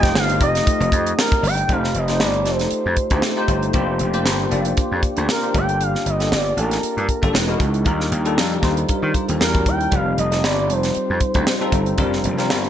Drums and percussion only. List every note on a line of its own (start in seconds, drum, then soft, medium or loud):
0.03 kick medium
0.03 snare soft
0.03 closed hi-hat soft
0.15 snare loud
0.29 closed hi-hat medium
0.41 kick medium
0.41 closed hi-hat medium
0.55 snare soft
0.55 closed hi-hat medium
0.67 kick medium
0.67 closed hi-hat medium
0.81 closed hi-hat medium
0.92 kick medium
0.92 closed hi-hat medium
1.07 closed hi-hat medium
1.19 snare loud
1.32 kick loud
1.32 closed hi-hat soft
1.44 open hi-hat medium
1.57 closed hi-hat soft
1.69 kick medium
1.69 closed hi-hat medium
1.84 snare soft
1.95 closed hi-hat medium
2.08 snare soft
2.08 closed hi-hat soft
2.20 snare medium
2.34 closed hi-hat soft
2.46 snare soft
2.46 closed hi-hat medium
2.59 snare soft
2.59 closed hi-hat soft
2.71 closed hi-hat medium
2.96 kick medium
2.96 closed hi-hat medium
3.10 kick medium
3.10 closed hi-hat soft
3.22 snare loud
3.48 kick medium
3.48 closed hi-hat medium
3.63 closed hi-hat soft
3.73 kick medium
3.73 closed hi-hat medium
3.99 closed hi-hat medium
4.14 closed hi-hat soft
4.26 snare loud
4.51 closed hi-hat medium
4.65 closed hi-hat medium
4.77 kick medium
4.77 closed hi-hat medium
5.03 kick medium
5.03 closed hi-hat medium
5.17 closed hi-hat medium
5.29 snare loud
5.43 closed hi-hat soft
5.54 kick medium
5.54 closed hi-hat medium
5.69 closed hi-hat soft
5.81 closed hi-hat medium
5.95 snare soft
6.06 closed hi-hat medium
6.20 snare soft
6.20 closed hi-hat soft
6.32 snare medium
6.46 closed hi-hat soft
6.58 closed hi-hat medium
6.71 snare soft
6.71 closed hi-hat medium
6.83 closed hi-hat medium
6.98 closed hi-hat soft
7.09 kick medium
7.09 closed hi-hat medium
7.23 kick medium
7.23 closed hi-hat soft
7.35 snare loud
7.49 closed hi-hat soft
7.60 kick medium
7.60 closed hi-hat medium
7.74 closed hi-hat soft
7.86 kick medium
7.86 closed hi-hat medium
8.01 snare soft
8.12 closed hi-hat medium
8.25 closed hi-hat soft
8.38 snare loud
8.51 closed hi-hat soft
8.63 kick medium
8.63 snare soft
8.63 closed hi-hat medium
8.77 closed hi-hat medium
8.89 kick medium
8.89 closed hi-hat medium
9.14 kick medium
9.14 closed hi-hat medium
9.29 closed hi-hat medium
9.41 snare loud
9.55 kick medium
9.55 closed hi-hat soft
9.66 kick medium
9.66 closed hi-hat medium
9.80 closed hi-hat soft
9.92 kick loud
9.92 closed hi-hat medium
10.18 closed hi-hat medium
10.32 snare soft
10.32 closed hi-hat soft
10.44 snare medium
10.70 closed hi-hat medium
10.83 snare soft
10.83 closed hi-hat medium
10.94 closed hi-hat medium
11.20 kick medium
11.20 closed hi-hat medium
11.34 kick medium
11.34 closed hi-hat soft
11.47 snare loud
11.72 kick medium
11.72 closed hi-hat medium
11.86 closed hi-hat soft
11.98 kick loud
11.98 closed hi-hat medium
12.13 snare soft
12.24 closed hi-hat medium
12.38 snare soft
12.38 closed hi-hat soft
12.50 snare loud
12.64 closed hi-hat soft